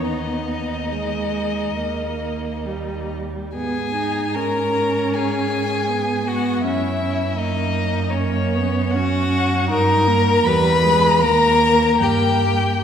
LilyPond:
<<
  \new Staff \with { instrumentName = "Violin" } { \time 4/4 \key gis \minor \tempo 4 = 76 dis''2.~ dis''8 r8 | gis''4 ais''4 gis''4. fis''8 | e''4 dis''4 cis''4 fis''4 | ais''4 b''4 ais''4 g''4 | }
  \new Staff \with { instrumentName = "Violin" } { \time 4/4 \key gis \minor dis'2.~ dis'8 r8 | gis'4 ais'4 gis'4. fis'8 | e'4 dis'4 cis'4 fis'4 | ais'4 b'4 ais'4 g'4 | }
  \new Staff \with { instrumentName = "Viola" } { \time 4/4 \key gis \minor b4 gis4 ais4 g4 | b8 dis'8 cis'2 b8 b8 | cis'8 cis'8 ais4 ais8 b8 cis'4 | dis'8 ais8 g8 gis8 ais2 | }
  \new Staff \with { instrumentName = "Cello" } { \clef bass \time 4/4 \key gis \minor dis,2 dis,4.~ dis,16 r16 | gis,1 | fis,1 | g,4 e,4 dis,4 g,4 | }
>>